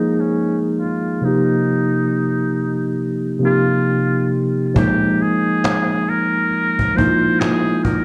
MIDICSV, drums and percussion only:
0, 0, Header, 1, 2, 480
1, 0, Start_track
1, 0, Tempo, 882353
1, 668, Time_signature, 4, 2, 24, 8
1, 4377, End_track
2, 0, Start_track
2, 0, Title_t, "Cajon"
2, 2589, Note_on_c, 9, 36, 119
2, 2643, Note_off_c, 9, 36, 0
2, 2837, Note_on_c, 9, 38, 31
2, 2891, Note_off_c, 9, 38, 0
2, 2975, Note_on_c, 9, 38, 23
2, 3029, Note_off_c, 9, 38, 0
2, 3069, Note_on_c, 9, 38, 87
2, 3073, Note_off_c, 9, 38, 0
2, 3073, Note_on_c, 9, 38, 110
2, 3128, Note_off_c, 9, 38, 0
2, 3313, Note_on_c, 9, 38, 36
2, 3367, Note_off_c, 9, 38, 0
2, 3539, Note_on_c, 9, 38, 46
2, 3593, Note_off_c, 9, 38, 0
2, 3694, Note_on_c, 9, 36, 74
2, 3748, Note_off_c, 9, 36, 0
2, 3800, Note_on_c, 9, 36, 83
2, 3854, Note_off_c, 9, 36, 0
2, 4031, Note_on_c, 9, 38, 78
2, 4035, Note_off_c, 9, 38, 0
2, 4035, Note_on_c, 9, 38, 100
2, 4089, Note_off_c, 9, 38, 0
2, 4269, Note_on_c, 9, 36, 81
2, 4323, Note_off_c, 9, 36, 0
2, 4377, End_track
0, 0, End_of_file